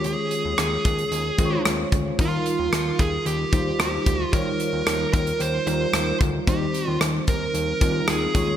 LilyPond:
<<
  \new Staff \with { instrumentName = "Lead electric guitar" } { \time 4/4 \key ees \mixolydian \tempo 4 = 112 aes'4 aes'2 r4 | f'4. aes'8 g'4 g'4 | bes'4. bes'8 c''8 c''4 r8 | g'4 r8 bes'4. aes'4 | }
  \new Staff \with { instrumentName = "Tine electric piano" } { \time 4/4 \key ees \mixolydian <aes des' f' des''>4. r4 <aes des' f' c'' des''>4. | <g ees' f' bes'>2 r8 <g ees' f' c''>4. | <g ees' f' des''>2 r8 <g ees' f' bes'>4. | <g c' ees' c''>2 r8 <g c' ees' f'>4 <aes des' f' des''>8 | }
  \new Staff \with { instrumentName = "Tine electric piano" } { \clef bass \time 4/4 \key ees \mixolydian ees4 r2. | ees4. r2 r8 | ees4. r2 r8 | ees4. r2 ees8 | }
  \new Staff \with { instrumentName = "Analog synth bass" } { \clef bass \time 4/4 \key ees \mixolydian ees,8 r16 ees,16 ees,8 ees,8 ees,8 ees,8 ees,8 d,8 | ees,8 r16 ees,16 ees,8 ees,8 ees,8 ees,8 ees,8 d,8 | ees,8 r16 ees,16 ees,8 ees,8 ees,8 ees,8 ees,8 d,8 | ees,8 r16 ees,16 ees,8 ees,8 ees,8 ees,8 ees,8 ees,8 | }
  \new DrumStaff \with { instrumentName = "Drums" } \drummode { \time 4/4 hh8 hh8 <hh ss>8 <hh bd>16 hh16 hh8 <hh bd>8 <hh ss>8 <hh bd>8 | <hh bd>8 hh8 <hh ss>8 <hh bd>8 hh8 <hh bd>8 <hh ss>8 <hh bd>8 | <hh bd>8 hh8 <hh ss>8 <hh bd>16 hh16 hh8 hh8 <hh ss>8 <hh bd>8 | <hh bd>8 hh8 <hh ss>8 <hh bd>8 hh8 <hh bd>8 <hh ss>8 <hh bd>8 | }
>>